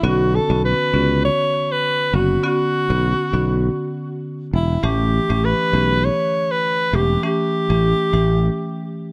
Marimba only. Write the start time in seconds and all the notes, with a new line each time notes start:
0.03 D3 B3 C#4 F#4
0.50 D3 B3 C#4 F#4
0.93 D3 B3 C#4 F#4
2.13 D3 B3 C#4 F#4
2.43 D3 B3 C#4 F#4
2.90 D3 B3 C#4 F#4
3.33 D3 B3 C#4 F#4
4.83 E3 A3 C#4 G4
5.29 E3 A3 C#4 G4
5.73 E3 A3 C#4 G4
6.93 E3 A3 C#4 G4
7.23 E3 A3 C#4 G4
7.70 E3 A3 C#4 G4
8.13 E3 A3 C#4 G4